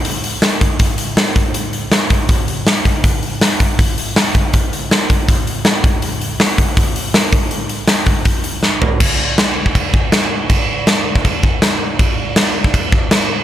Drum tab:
CC |----------------|----------------|----------------|----------------|
HH |o-o-o-o-o-o-o-o-|o-o-o-o-o-o-o-o-|o-o-o-o-o-o-o-o-|o-o-o-o-o-o-o-o-|
SD |----o-------o---|----o-------o---|----o-------o---|----o-------o---|
FT |----------------|----------------|----------------|----------------|
BD |------o-o-----o-|------o-o-----o-|o-----o-o-----o-|o-----o-o-----o-|

CC |----------------|----------------|x---x---x---x---|x---x---x---x---|
HH |o-o-o-o-o-o-o-o-|o-o-o-o-o-o-----|----------------|----------------|
SD |----o-------o---|----o-------o---|----o-------o---|----o-------o---|
FT |----------------|--------------o-|----------------|----------------|
BD |------o-o-----o-|------o-o-------|o------oo-o-----|o------oo-o-----|

CC |x---x---x---x---|
HH |----------------|
SD |----o-------o---|
FT |----------------|
BD |o------oo-o-----|